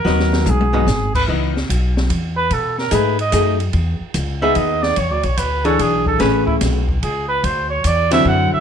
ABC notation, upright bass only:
X:1
M:3/4
L:1/8
Q:"Swing" 1/4=146
K:G#m
V:1 name="Upright bass" clef=bass
D,,2 B,,,2 G,,,2 | [K:C#m] C,,2 B,,,2 E,,2 | B,,2 G,,2 F,,2 | E,, z C,,2 D,,2 |
(3E,, =D,, B,,, D,,2 B,,,2 | A,,,2 B,,,2 C,,2 | =D,,2 E,,2 F,, z |]